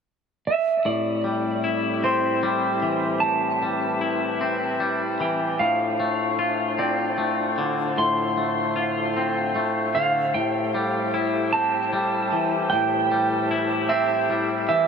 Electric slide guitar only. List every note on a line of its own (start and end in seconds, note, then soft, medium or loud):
0.47 0.87 E5 medium
0.86 2.00 D5 medium
2.04 3.26 C5 medium
3.20 4.75 A5 medium
5.22 5.58 G5 medium
5.59 6.82 F5 medium
6.79 8.01 D5 medium
7.98 9.52 C6 medium
9.95 10.31 F5 medium
10.34 11.49 G5 medium
11.53 12.69 A5 medium
12.70 13.93 G5 medium
13.89 14.67 E5 medium
14.69 14.88 E5 medium